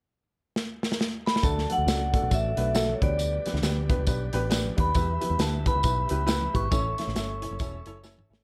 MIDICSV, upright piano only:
0, 0, Header, 1, 2, 480
1, 0, Start_track
1, 0, Key_signature, 2, "major"
1, 0, Tempo, 440529
1, 1562, Time_signature, 4, 2, 24, 8
1, 9195, End_track
2, 0, Start_track
2, 0, Title_t, "Upright piano"
2, 0, Program_c, 0, 0
2, 1554, Note_on_c, 0, 57, 89
2, 1557, Note_on_c, 0, 62, 77
2, 1557, Note_on_c, 0, 69, 90
2, 1558, Note_on_c, 0, 66, 73
2, 1713, Note_off_c, 0, 57, 0
2, 1715, Note_off_c, 0, 62, 0
2, 1715, Note_off_c, 0, 66, 0
2, 1715, Note_off_c, 0, 69, 0
2, 1844, Note_on_c, 0, 62, 58
2, 1845, Note_on_c, 0, 57, 67
2, 1847, Note_on_c, 0, 66, 60
2, 1848, Note_on_c, 0, 69, 66
2, 1949, Note_off_c, 0, 62, 0
2, 1950, Note_off_c, 0, 57, 0
2, 1950, Note_off_c, 0, 66, 0
2, 1951, Note_off_c, 0, 69, 0
2, 2032, Note_on_c, 0, 57, 67
2, 2033, Note_on_c, 0, 62, 58
2, 2036, Note_on_c, 0, 66, 67
2, 2037, Note_on_c, 0, 69, 69
2, 2192, Note_off_c, 0, 57, 0
2, 2192, Note_off_c, 0, 62, 0
2, 2194, Note_off_c, 0, 66, 0
2, 2195, Note_off_c, 0, 69, 0
2, 2327, Note_on_c, 0, 62, 58
2, 2328, Note_on_c, 0, 66, 64
2, 2329, Note_on_c, 0, 57, 64
2, 2336, Note_on_c, 0, 69, 75
2, 2430, Note_off_c, 0, 62, 0
2, 2431, Note_off_c, 0, 57, 0
2, 2431, Note_off_c, 0, 66, 0
2, 2435, Note_off_c, 0, 69, 0
2, 2502, Note_on_c, 0, 57, 64
2, 2506, Note_on_c, 0, 66, 60
2, 2507, Note_on_c, 0, 62, 63
2, 2511, Note_on_c, 0, 69, 71
2, 2667, Note_off_c, 0, 57, 0
2, 2669, Note_off_c, 0, 66, 0
2, 2670, Note_off_c, 0, 62, 0
2, 2671, Note_off_c, 0, 69, 0
2, 2796, Note_on_c, 0, 57, 81
2, 2802, Note_on_c, 0, 66, 72
2, 2804, Note_on_c, 0, 62, 79
2, 2805, Note_on_c, 0, 71, 85
2, 2905, Note_off_c, 0, 57, 0
2, 2908, Note_off_c, 0, 66, 0
2, 2909, Note_off_c, 0, 62, 0
2, 2910, Note_off_c, 0, 71, 0
2, 2989, Note_on_c, 0, 66, 82
2, 2991, Note_on_c, 0, 57, 95
2, 2992, Note_on_c, 0, 62, 86
2, 2993, Note_on_c, 0, 69, 101
2, 3151, Note_off_c, 0, 66, 0
2, 3152, Note_off_c, 0, 57, 0
2, 3152, Note_off_c, 0, 62, 0
2, 3153, Note_off_c, 0, 69, 0
2, 3282, Note_on_c, 0, 59, 74
2, 3286, Note_on_c, 0, 67, 62
2, 3289, Note_on_c, 0, 62, 67
2, 3293, Note_on_c, 0, 71, 80
2, 3651, Note_off_c, 0, 59, 0
2, 3653, Note_off_c, 0, 67, 0
2, 3654, Note_off_c, 0, 62, 0
2, 3656, Note_off_c, 0, 71, 0
2, 3768, Note_on_c, 0, 59, 68
2, 3769, Note_on_c, 0, 62, 65
2, 3772, Note_on_c, 0, 71, 72
2, 3773, Note_on_c, 0, 67, 60
2, 3871, Note_off_c, 0, 59, 0
2, 3872, Note_off_c, 0, 62, 0
2, 3873, Note_off_c, 0, 67, 0
2, 3873, Note_off_c, 0, 71, 0
2, 3951, Note_on_c, 0, 59, 83
2, 3952, Note_on_c, 0, 62, 67
2, 3959, Note_on_c, 0, 71, 83
2, 3960, Note_on_c, 0, 67, 73
2, 4112, Note_off_c, 0, 59, 0
2, 4113, Note_off_c, 0, 62, 0
2, 4116, Note_off_c, 0, 67, 0
2, 4116, Note_off_c, 0, 71, 0
2, 4240, Note_on_c, 0, 59, 88
2, 4243, Note_on_c, 0, 62, 77
2, 4245, Note_on_c, 0, 67, 73
2, 4245, Note_on_c, 0, 71, 88
2, 4347, Note_off_c, 0, 59, 0
2, 4349, Note_off_c, 0, 62, 0
2, 4350, Note_off_c, 0, 67, 0
2, 4350, Note_off_c, 0, 71, 0
2, 4435, Note_on_c, 0, 62, 69
2, 4437, Note_on_c, 0, 59, 76
2, 4438, Note_on_c, 0, 67, 67
2, 4440, Note_on_c, 0, 71, 87
2, 4594, Note_off_c, 0, 62, 0
2, 4595, Note_off_c, 0, 59, 0
2, 4596, Note_off_c, 0, 67, 0
2, 4597, Note_off_c, 0, 71, 0
2, 4718, Note_on_c, 0, 62, 86
2, 4720, Note_on_c, 0, 59, 92
2, 4720, Note_on_c, 0, 67, 95
2, 4725, Note_on_c, 0, 71, 116
2, 4827, Note_off_c, 0, 62, 0
2, 4828, Note_off_c, 0, 59, 0
2, 4828, Note_off_c, 0, 67, 0
2, 4830, Note_off_c, 0, 71, 0
2, 4899, Note_on_c, 0, 59, 107
2, 4902, Note_on_c, 0, 62, 108
2, 4905, Note_on_c, 0, 67, 95
2, 4909, Note_on_c, 0, 71, 106
2, 5067, Note_off_c, 0, 59, 0
2, 5068, Note_off_c, 0, 62, 0
2, 5070, Note_off_c, 0, 67, 0
2, 5071, Note_off_c, 0, 71, 0
2, 5189, Note_on_c, 0, 59, 68
2, 5193, Note_on_c, 0, 62, 68
2, 5194, Note_on_c, 0, 67, 67
2, 5195, Note_on_c, 0, 71, 77
2, 5302, Note_off_c, 0, 59, 0
2, 5305, Note_off_c, 0, 62, 0
2, 5305, Note_off_c, 0, 67, 0
2, 5305, Note_off_c, 0, 71, 0
2, 5384, Note_on_c, 0, 59, 92
2, 5384, Note_on_c, 0, 67, 76
2, 5388, Note_on_c, 0, 64, 81
2, 5389, Note_on_c, 0, 71, 95
2, 5549, Note_off_c, 0, 59, 0
2, 5549, Note_off_c, 0, 67, 0
2, 5551, Note_off_c, 0, 64, 0
2, 5552, Note_off_c, 0, 71, 0
2, 5673, Note_on_c, 0, 59, 73
2, 5675, Note_on_c, 0, 64, 66
2, 5677, Note_on_c, 0, 67, 60
2, 5680, Note_on_c, 0, 71, 77
2, 5785, Note_off_c, 0, 59, 0
2, 5786, Note_off_c, 0, 64, 0
2, 5786, Note_off_c, 0, 67, 0
2, 5788, Note_off_c, 0, 71, 0
2, 5865, Note_on_c, 0, 59, 64
2, 5869, Note_on_c, 0, 67, 66
2, 5871, Note_on_c, 0, 64, 59
2, 5873, Note_on_c, 0, 71, 76
2, 6030, Note_off_c, 0, 59, 0
2, 6032, Note_off_c, 0, 67, 0
2, 6033, Note_off_c, 0, 64, 0
2, 6034, Note_off_c, 0, 71, 0
2, 6160, Note_on_c, 0, 67, 61
2, 6164, Note_on_c, 0, 59, 74
2, 6164, Note_on_c, 0, 64, 59
2, 6165, Note_on_c, 0, 71, 76
2, 6269, Note_off_c, 0, 67, 0
2, 6270, Note_off_c, 0, 59, 0
2, 6270, Note_off_c, 0, 64, 0
2, 6271, Note_off_c, 0, 71, 0
2, 6356, Note_on_c, 0, 59, 61
2, 6358, Note_on_c, 0, 64, 61
2, 6358, Note_on_c, 0, 71, 75
2, 6361, Note_on_c, 0, 67, 59
2, 6516, Note_off_c, 0, 59, 0
2, 6517, Note_off_c, 0, 64, 0
2, 6517, Note_off_c, 0, 71, 0
2, 6518, Note_off_c, 0, 67, 0
2, 6640, Note_on_c, 0, 59, 84
2, 6644, Note_on_c, 0, 64, 77
2, 6646, Note_on_c, 0, 67, 81
2, 6649, Note_on_c, 0, 71, 95
2, 6749, Note_off_c, 0, 59, 0
2, 6750, Note_off_c, 0, 64, 0
2, 6752, Note_off_c, 0, 67, 0
2, 6753, Note_off_c, 0, 71, 0
2, 6821, Note_on_c, 0, 59, 95
2, 6823, Note_on_c, 0, 64, 100
2, 6827, Note_on_c, 0, 71, 119
2, 6828, Note_on_c, 0, 67, 94
2, 6988, Note_off_c, 0, 59, 0
2, 6990, Note_off_c, 0, 64, 0
2, 6991, Note_off_c, 0, 71, 0
2, 6992, Note_off_c, 0, 67, 0
2, 7121, Note_on_c, 0, 67, 66
2, 7123, Note_on_c, 0, 59, 62
2, 7125, Note_on_c, 0, 64, 61
2, 7126, Note_on_c, 0, 71, 75
2, 7229, Note_off_c, 0, 67, 0
2, 7230, Note_off_c, 0, 59, 0
2, 7231, Note_off_c, 0, 64, 0
2, 7231, Note_off_c, 0, 71, 0
2, 7307, Note_on_c, 0, 69, 77
2, 7311, Note_on_c, 0, 64, 88
2, 7312, Note_on_c, 0, 61, 89
2, 7313, Note_on_c, 0, 73, 107
2, 7471, Note_off_c, 0, 69, 0
2, 7473, Note_off_c, 0, 64, 0
2, 7474, Note_off_c, 0, 61, 0
2, 7474, Note_off_c, 0, 73, 0
2, 7608, Note_on_c, 0, 69, 60
2, 7609, Note_on_c, 0, 64, 65
2, 7610, Note_on_c, 0, 61, 68
2, 7611, Note_on_c, 0, 76, 78
2, 7713, Note_off_c, 0, 64, 0
2, 7713, Note_off_c, 0, 69, 0
2, 7714, Note_off_c, 0, 61, 0
2, 7714, Note_off_c, 0, 76, 0
2, 7790, Note_on_c, 0, 61, 77
2, 7791, Note_on_c, 0, 64, 69
2, 7795, Note_on_c, 0, 69, 74
2, 7799, Note_on_c, 0, 76, 89
2, 7953, Note_off_c, 0, 61, 0
2, 7953, Note_off_c, 0, 64, 0
2, 7955, Note_off_c, 0, 69, 0
2, 7957, Note_off_c, 0, 76, 0
2, 8083, Note_on_c, 0, 61, 82
2, 8087, Note_on_c, 0, 64, 75
2, 8090, Note_on_c, 0, 69, 68
2, 8092, Note_on_c, 0, 73, 86
2, 8190, Note_off_c, 0, 61, 0
2, 8192, Note_off_c, 0, 64, 0
2, 8193, Note_off_c, 0, 69, 0
2, 8195, Note_off_c, 0, 73, 0
2, 8281, Note_on_c, 0, 61, 83
2, 8281, Note_on_c, 0, 69, 77
2, 8282, Note_on_c, 0, 64, 75
2, 8284, Note_on_c, 0, 73, 93
2, 8438, Note_off_c, 0, 61, 0
2, 8438, Note_off_c, 0, 69, 0
2, 8439, Note_off_c, 0, 64, 0
2, 8440, Note_off_c, 0, 73, 0
2, 8570, Note_on_c, 0, 61, 86
2, 8571, Note_on_c, 0, 69, 95
2, 8574, Note_on_c, 0, 64, 95
2, 8574, Note_on_c, 0, 73, 112
2, 8673, Note_off_c, 0, 61, 0
2, 8674, Note_off_c, 0, 69, 0
2, 8675, Note_off_c, 0, 64, 0
2, 8675, Note_off_c, 0, 73, 0
2, 8751, Note_on_c, 0, 69, 94
2, 8752, Note_on_c, 0, 61, 95
2, 8755, Note_on_c, 0, 64, 100
2, 8756, Note_on_c, 0, 81, 64
2, 8758, Note_on_c, 0, 73, 126
2, 8913, Note_off_c, 0, 61, 0
2, 8913, Note_off_c, 0, 69, 0
2, 8915, Note_off_c, 0, 64, 0
2, 8916, Note_off_c, 0, 73, 0
2, 9030, Note_off_c, 0, 81, 0
2, 9041, Note_on_c, 0, 61, 78
2, 9043, Note_on_c, 0, 64, 67
2, 9045, Note_on_c, 0, 76, 63
2, 9046, Note_on_c, 0, 69, 74
2, 9049, Note_on_c, 0, 73, 86
2, 9148, Note_off_c, 0, 61, 0
2, 9149, Note_off_c, 0, 64, 0
2, 9151, Note_off_c, 0, 69, 0
2, 9152, Note_off_c, 0, 73, 0
2, 9195, Note_off_c, 0, 76, 0
2, 9195, End_track
0, 0, End_of_file